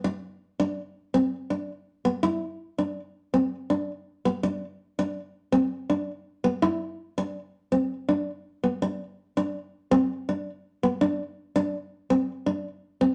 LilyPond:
\new Staff \with { instrumentName = "Nylon-string guitar" } { \time 12/8 \key b \phrygian \tempo 4. = 109 r4. d'4 r8 c'4 d'4 r8 b8 | e'4 r8 d'4 r8 c'4 d'4 r8 b8 | d'4 r8 d'4 r8 c'4 d'4 r8 b8 | e'4 r8 d'4 r8 c'4 d'4 r8 b8 |
d'4 r8 d'4 r8 c'4 d'4 r8 b8 | d'4 r8 d'4 r8 c'4 d'4 r8 c'8 | }